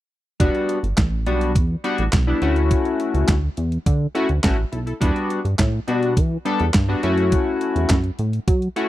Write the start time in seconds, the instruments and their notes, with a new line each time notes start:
0.40 analog synth bass E1, analog polysynth G3 B3 D4 F#4, kick, closed hi-hat
0.55 closed hi-hat
0.69 closed hi-hat
0.83 analog synth bass G1, closed hi-hat
0.97 analog synth bass A1, kick, snare, clap, closed hi-hat
1.26 analog synth bass B1, analog polysynth G3 B3 D4 F#4, closed hi-hat
1.41 closed hi-hat
1.55 analog synth bass E2, kick, closed hi-hat
1.84 analog polysynth G3 B3 D4 F#4, closed hi-hat
1.98 analog synth bass A1, closed hi-hat
2.13 analog synth bass B1, kick, snare, clap, closed hi-hat
2.27 analog polysynth G3 B3 D4 E4
2.42 analog synth bass D2, analog polysynth A3 C#4 E4 F#4, closed hi-hat
2.56 closed hi-hat
2.71 kick, closed hi-hat
2.85 closed hi-hat
3.00 closed hi-hat
3.14 analog synth bass C#2, closed hi-hat
3.28 analog synth bass D2, kick, snare, clap, closed hi-hat
3.57 analog synth bass E2, closed hi-hat
3.72 closed hi-hat
3.86 analog synth bass D3, kick, closed hi-hat
4.15 analog polysynth A3 C#4 E4 F#4, closed hi-hat
4.29 analog synth bass D2, closed hi-hat
4.43 analog synth bass A1, analog polysynth A3 C#4 E4 F#4, kick, snare, clap, closed hi-hat
4.72 analog synth bass B1, analog polysynth E4 A4, closed hi-hat
4.86 analog polysynth E4 A4, closed hi-hat
5.00 analog synth bass E2, analog polysynth G3 B3 D4 F#4, kick, closed hi-hat
5.16 closed hi-hat
5.30 closed hi-hat
5.45 analog synth bass G2, closed hi-hat
5.59 analog synth bass A2, kick, snare, clap, closed hi-hat
5.87 analog synth bass B2, analog polysynth G3 B3 D4 F#4, closed hi-hat
6.03 closed hi-hat
6.17 analog synth bass E3, kick, closed hi-hat
6.45 analog polysynth G3 B3 D4 A4, closed hi-hat
6.60 analog synth bass E2, closed hi-hat
6.74 analog synth bass G2, kick, snare, clap, closed hi-hat
6.88 analog polysynth G3 B3 D4 F#4
7.03 analog synth bass F#2, analog polysynth A3 C#4 E4 F#4, closed hi-hat
7.18 closed hi-hat
7.32 kick, closed hi-hat
7.61 closed hi-hat
7.76 analog synth bass E2, closed hi-hat
7.89 analog synth bass F#2, kick, snare, clap, closed hi-hat
8.04 closed hi-hat
8.19 analog synth bass A2, closed hi-hat
8.33 closed hi-hat
8.48 analog synth bass F#3, kick, closed hi-hat
8.62 closed hi-hat
8.76 analog polysynth A3 C#4 E4 F#4, closed hi-hat